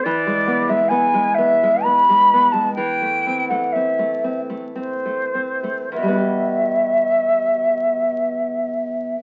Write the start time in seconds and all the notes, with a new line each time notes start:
0.04 E3 D5
0.27 G#3
0.47 B3
0.69 G#3 E5
0.88 B3 G#5
1.14 G#3
1.34 B3 E5
1.63 G#3
1.84 B3 B5
2.09 G#3
2.34 B3
2.52 G#3 A5
2.75 E3 G5
3.02 A3
3.27 C4
3.49 A3 F#5
3.72 C4 E5
3.99 A3
4.24 C4
4.50 A3
4.76 C4 C5
5.05 A3
5.35 C4
5.63 A3
5.92 E2 E5
5.97 B2
6.02 G3
6.08 B3
6.13 E4
6.17 G4